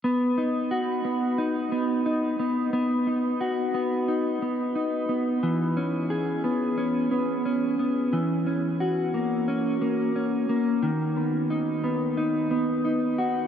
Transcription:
\new Staff \with { instrumentName = "Clean electric guitar" } { \time 4/4 \key b \major \tempo 4 = 89 b8 dis'8 fis'8 b8 dis'8 b8 dis'8 b8 | b8 dis'8 fis'8 b8 dis'8 b8 dis'8 b8 | e8 cis'8 gis'8 b8 cis'8 b8 cis'8 b8 | e8 cis'8 fis'8 ais8 cis'8 ais8 cis'8 ais8 |
dis8 b8 dis'8 b8 dis'8 b8 dis'8 fis'8 | }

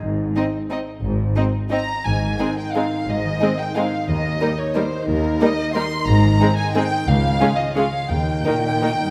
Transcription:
<<
  \new Staff \with { instrumentName = "Violin section" } { \time 3/4 \key aes \major \tempo 4 = 177 r4 ees''4 ees''4 | r4 ees''4 <ees'' bes''>4 | aes''4. g''8 f''4 | ees''4. g''8 f''4 |
ees''4. des''8 c''4 | bes'4 ees''4 c'''4 | bes''4. aes''8 g''4 | f''4. ees''8 f''4 |
g''2. | }
  \new Staff \with { instrumentName = "Violin section" } { \time 3/4 \key aes \major r4 ees'4 ees'4 | r4 ees'4 ees'4 | r4 <ees' aes'>4 <ees' aes'>4 | r4 <ees' aes'>4 <ees' aes'>4 |
r4 <ees' bes'>4 <ees' bes'>4 | r4 <ees' bes'>4 <ees' bes'>4 | r4 <ees' aes'>4 <ees' aes'>4 | r4 <f' aes'>4 <f' aes'>4 |
r4 <ees' bes'>4 <ees' bes'>4 | }
  \new Staff \with { instrumentName = "Harp" } { \time 3/4 \key aes \major << { <aes, c' ees' aes'>2.~ | <aes, c' ees' aes'>2.~ | <aes, c' ees' aes'>2.~ | <aes, c' ees' aes'>2. |
r2. | r2. | r2. | r2. |
r2. | } \\ { r2. | r2. | aes,8 ees8 c'8 ees'8 aes'8 c'8 | aes,8 ees8 c'8 ees'8 aes'8 c'8 |
ees8 bes8 ees'8 g'8 bes'8 ees'8 | ees8 bes8 ees'8 g'8 bes'8 ees'8 | aes,8 ees8 c'8 ees'8 aes'8 c'8 | des8 aes8 des'8 f'8 aes'8 des'8 |
ees8 bes8 ees'8 bes'8 ees'8 bes8 | } >> }
  \new Staff \with { instrumentName = "Viola section" } { \time 3/4 \key aes \major r4 c'4 c'4 | r4 c'4 c'4 | r4 <aes c'>4 <aes c'>4 | r4 <aes c'>4 <aes c'>4 |
r4 <g bes>4 <g bes>4 | r4 <g bes>4 <g bes>4 | r4 <aes c'>4 <aes c'>4 | r4 <aes des'>4 <aes des'>4 |
r4 <ees bes>4 <ees bes>4 | }
  \new Staff \with { instrumentName = "Cello section" } { \clef bass \time 3/4 \key aes \major aes,4 r2 | aes,4 r2 | aes,4 r2 | aes,4 r2 |
ees,4 r2 | ees,4 r2 | aes,4 r2 | des,4 r2 |
ees,4 bes,4. g,8 | }
  \new Staff \with { instrumentName = "Double bass section" } { \clef bass \time 3/4 \key aes \major aes,,4 r2 | aes,,4 r2 | aes,,4 r2 | aes,,4 r2 |
ees,4 r2 | ees,4 r2 | aes,,4 r2 | des,4 r2 |
ees,4 r2 | }
>>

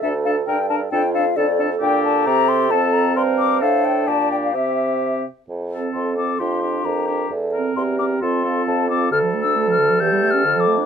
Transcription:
<<
  \new Staff \with { instrumentName = "Flute" } { \time 2/4 \key d \minor \tempo 4 = 133 e''8 f''8 g''8 a''8 | g''8 f''8 d''4 | \key f \major g''8 a''8 bes''8 c'''8 | a''8 bes''8 c'''8 d'''8 |
f''8 g''8 a''8 g''16 f''16 | e''4. r8 | r4 c'''8 d'''8 | c'''4 bes''4 |
r4 c'''8 d'''8 | c'''4 a''8 d'''8 | \key d \minor \tuplet 3/2 { f'''4 e'''8~ e'''8 f'''4 } | \tuplet 3/2 { g'''4 f'''8~ f'''8 d'''4 } | }
  \new Staff \with { instrumentName = "Oboe" } { \time 2/4 \key d \minor a'8 a'8 bes'8 bes'8 | a'8 a'8 a'8 a'8 | \key f \major g'4 g'4 | a'4 bes'4 |
a'4 g'4 | g'4. r8 | r8 a'4 a'8 | g'8 g'4 g'8 |
r8 bes'4 bes'8 | a'8 a'4 a'8 | \key d \minor a'2~ | a'2 | }
  \new Staff \with { instrumentName = "French horn" } { \time 2/4 \key d \minor d'8 d'8 d'8 d'8 | d'8 d'8 d'8 d'8 | \key f \major d'4 c'4 | c'2 |
d'2 | c'4. r8 | r4 a'4 | f'4 bes'4 |
a'4 g'4 | f'2 | \key d \minor a'4 a'4 | g'4 a'4 | }
  \new Staff \with { instrumentName = "Clarinet" } { \time 2/4 \key d \minor a'2 | f'4 a'4~ | \key f \major a'2~ | a'4 c''4~ |
c''4 d''4 | e''4. r8 | r8 c'4 c'8 | d'8 d'4 d'8 |
r8 c'4 c'8 | c'8 c'4 c'8 | \key d \minor d16 f16 a16 d'16 a16 f16 d16 f16 | e16 g16 a16 cis'16 d16 f16 a16 d'16 | }
  \new Staff \with { instrumentName = "Bassoon" } { \clef bass \time 2/4 \key d \minor d,4 g,4 | f,4 f,4 | \key f \major bes,4 c4 | f,4 g,4 |
a,4 bes,4 | c4. r8 | f,4 f,4 | f,4 f,4 |
e,4 e,4 | f,4 f,4 | \key d \minor d,2 | e,4 f,4 | }
>>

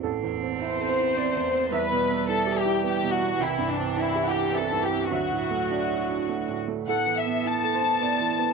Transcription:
<<
  \new Staff \with { instrumentName = "Violin section" } { \time 3/4 \key a \dorian \tempo 4 = 106 r4 c''2 | b'4 a'8 g'8 g'8 fis'8 | e'8 d'8 e'8 g'8 a'8 g'8 | fis'2~ fis'8 r8 |
fis''8 e''8 a''2 | }
  \new Staff \with { instrumentName = "Grand piano" } { \time 3/4 \key a \dorian a'4. c''8 d''4 | e''2~ e''8 r8 | g''4. fis''8 e''4 | e''4 d''4 r4 |
a'4. c''8 d''4 | }
  \new Staff \with { instrumentName = "Grand piano" } { \time 3/4 \key a \dorian \tuplet 3/2 { a,,8 e,8 c'8 e'8 a'8 e'8 c'8 e,8 c'8 } | \tuplet 3/2 { e,8 b,8 b8 e'8 g'8 e'8 b8 b,8 b8 } | \tuplet 3/2 { c,8 g,8 c'8 e'8 g'8 e'8 c'8 g,8 c'8 } | \tuplet 3/2 { d,8 a,8 a8 d'8 fis'8 d'8 a8 a,8 a8 } |
\tuplet 3/2 { a,8 e8 b8 e'8 a'8 e'8 b8 e8 b8 } | }
  \new Staff \with { instrumentName = "Cello" } { \clef bass \time 3/4 \key a \dorian c'2. | g2. | e2. | fis2~ fis8 r8 |
b2. | }
>>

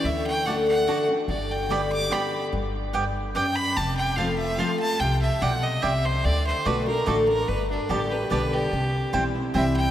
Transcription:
<<
  \new Staff \with { instrumentName = "Fiddle" } { \time 3/4 \key g \major \tempo 4 = 145 e''8 g''8 fis''8 fis''4 r8 | d''8 g''8 b''8 d'''8 b''8. r16 | r2 g''8 b''8 | a''8 g''8 f''8 e''8 f''8 a''8 |
g''8 e''8 fis''8 ees''8 e''8 c''8 | d''8 c''8 b'8 bes'8 a'8 bes'8 | b'8 d'8 g'8 b'8 b'8 g'8~ | g'4 r4 e''8 g''8 | }
  \new Staff \with { instrumentName = "Mandolin" } { \time 3/4 \key g \major r4 <a fis' d'' a''>8 r8 <a fis' d'' a''>8 r8 | r4 <b g' d'' g''>8 r8 <b g' d'' g''>8 r8 | r4 <b g' d'' g''>8 r8 <b g' d'' g''>8 r8 | r4 <c' f' c'' a''>8 r8 <c' f' c'' a''>8 r8 |
r4 <c' e' d'' g''>8 r8 <c' e' d'' g''>8 r8 | r4 <a fis' d'' a''>8 r8 <a fis' d'' a''>8 r8 | r4 <b g' d'' a''>8 r8 <b g' d'' a''>8 r8 | r4 <c' e' c'' g''>8 r8 <c' e' c'' g''>8 r8 | }
  \new Staff \with { instrumentName = "Steel-string acoustic guitar" } { \time 3/4 \key g \major << { r4 <d a d' fis'>4 <d a d' fis'>8 <d' fis'>8 | r4 <d g b g'>4 <d g b g'>4 | r2. | r4 <f a c' f'>4 <f a c' f'>4 |
r2. | r4 <d a d' fis'>8 <d' fis'>8 <d a d' fis'>8 <d' fis'>8 | r4 <d g b g'>8 <b g'>8 <d g b g'>4 | r4 <e g c' e'>8 <c' e'>8 <e g c' e'>4 | } \\ { d2 r4 | g,2 r4 | g,4 g,4 fis,4 | f,2 r4 |
c4 b,4 c4 | d2 r4 | g,2 r4 | c2 r4 | } >> }
  \new Staff \with { instrumentName = "Upright bass" } { \clef bass \time 3/4 \key g \major d,2. | g,,2. | g,,2. | f,,2. |
c,4 b,,4 c,4 | d,4 b,,4 a,,4 | g,,4 a,,4 b,,4 | c,4 b,,4 c,4 | }
>>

